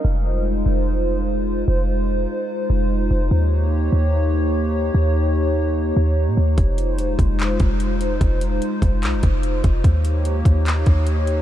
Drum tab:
HH |--------|--------|--------|--------|
CP |--------|--------|--------|--------|
BD |--------|--------|--------|--------|

HH |xxxxxxxx|xxxxxxxx|xxxxxxxx|
CP |----x---|----x---|----x---|
BD |o--o-o--|o--o-o-o|o--o-o--|